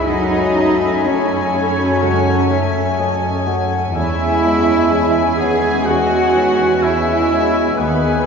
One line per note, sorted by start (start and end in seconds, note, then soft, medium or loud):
0.00 0.10 G#2 medium
0.00 0.11 G#3 soft
0.00 0.10 E4 soft
0.00 0.10 C#5 medium
0.00 2.04 B5 medium
0.06 0.55 F#2 medium
0.06 3.91 F#2 medium
0.06 1.04 F#3 medium
0.06 3.91 C#4 medium
0.06 1.03 D#4 medium
0.06 3.95 A4 medium
0.06 1.04 D#5 medium
0.06 1.06 D#5 medium
0.06 0.57 F#5 medium
0.06 3.90 G#5 medium
0.56 1.01 A3 soft
0.56 1.01 F#4 soft
0.56 1.02 C#5 medium
0.56 1.07 E5 medium
1.05 3.43 F#3 medium
1.05 1.50 A3 soft
1.05 3.47 C#4 medium
1.05 1.50 F#4 soft
1.05 3.47 C#5 medium
1.05 1.50 C#5 medium
1.05 3.44 C#5 medium
1.05 1.55 D#5 medium
1.54 1.99 A3 soft
1.54 1.99 F#4 soft
1.54 2.04 C#5 medium
1.54 1.99 C#5 medium
2.02 2.49 C#2 medium
2.02 2.53 F#5 medium
2.02 2.72 A5 medium
2.51 2.95 A3 soft
2.51 2.95 F#4 soft
2.51 2.95 C#5 soft
2.51 3.00 E5 medium
2.98 3.42 A3 soft
2.98 3.43 F#4 soft
2.98 3.43 C#5 soft
2.98 3.68 D#5 medium
2.98 3.43 G#5 medium
3.46 3.91 A3 soft
3.46 3.91 F#4 soft
3.46 3.91 C#5 medium
3.46 3.96 F#5 medium
3.95 4.42 E2 medium
3.95 7.74 E2 medium
3.95 7.74 G#3 medium
3.95 5.36 G#3 medium
3.95 7.74 C#4 medium
3.95 5.35 E4 medium
3.95 4.94 C#5 medium
3.95 5.35 E5 medium
3.95 4.45 G#5 medium
3.95 7.74 G#5 medium
4.43 4.88 G#3 soft
4.43 4.88 E4 soft
4.43 4.88 C#5 soft
4.43 4.93 A5 medium
4.90 5.34 G#3 soft
4.90 5.35 E4 soft
4.90 5.35 C#5 medium
4.90 5.87 E5 medium
4.90 5.41 G#5 medium
5.39 5.83 D#3 soft
5.39 5.83 G#3 soft
5.39 5.87 B3 medium
5.39 5.86 G#4 medium
5.39 5.83 C#5 medium
5.39 5.87 F#5 medium
5.39 5.87 G#5 medium
5.39 5.86 G#5 medium
5.86 6.33 E2 medium
5.86 6.82 G#3 medium
5.86 6.83 F#4 medium
5.86 6.36 D#5 medium
5.86 6.84 F#5 medium
5.86 6.83 F#5 medium
5.86 7.75 G#5 medium
6.35 6.79 G#3 soft
6.35 6.79 D#4 soft
6.35 6.85 B4 medium
6.35 6.79 C#5 soft
6.82 7.26 G#3 soft
6.82 7.78 G#3 medium
6.82 7.78 E4 medium
6.82 7.27 E4 soft
6.82 7.30 C#5 medium
6.82 7.27 C#5 medium
6.82 7.77 E5 medium
6.82 7.78 E5 medium
7.30 7.74 G#3 medium
7.30 7.74 E4 soft
7.30 7.80 C#5 medium
7.30 7.74 C#5 medium
7.77 8.25 D#2 medium
7.77 8.26 D#2 medium
7.77 8.26 D#3 medium
7.77 8.26 B3 medium
7.77 8.26 G#4 medium
7.77 8.26 B4 medium
7.77 8.26 D#5 medium
7.77 8.26 G#5 medium